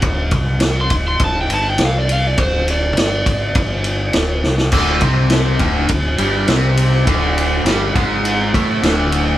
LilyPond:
<<
  \new Staff \with { instrumentName = "Electric slide guitar" } { \time 4/4 \key c \mixolydian \tempo 4 = 102 r4 r16 c'''16 r16 c'''16 a''16 g''16 a''16 g''16 f''16 d''16 f''16 d''16 | c''8 d''2. r8 | r1 | r1 | }
  \new Staff \with { instrumentName = "Overdriven electric guitar" } { \clef bass \time 4/4 \key c \mixolydian r1 | r1 | <d, d>8 <c c'>4 <d, d>8 d,8 <g, g>8 <c c'>4 | <d, d>4 <g, g>8 <gis, gis>4 <a, a>8 <d, d>4 | }
  \new Staff \with { instrumentName = "Fingered electric bass" } { \clef bass \time 4/4 \key c \mixolydian d,,8 c,4 d,,8 d,,8 g,,8 c,4 | d,,4 g,,8 gis,,8 g,,4 d,,8 c,8 | d,,8 c,4 d,,8 d,,8 g,,8 c,4 | d,,4 g,,8 gis,,4 a,,8 d,,4 | }
  \new DrumStaff \with { instrumentName = "Drums" } \drummode { \time 4/4 <bd cymr>8 <bd cymr>8 <cymr sn>8 <bd cymr>8 <bd cymr>8 cymr8 <cymr sn>8 cymr8 | <bd cymr>8 cymr8 <cymr sn>8 <bd cymr>8 <bd cymr>8 cymr8 <cymr sn>8 sn16 sn16 | <cymc bd>8 <bd cymr>8 <cymr sn>8 <bd cymr>8 <bd cymr>8 cymr8 <cymr sn>8 cymr8 | <bd cymr>8 cymr8 <cymr sn>8 <bd cymr>8 cymr8 <bd cymr>8 <cymr sn>8 cymr8 | }
>>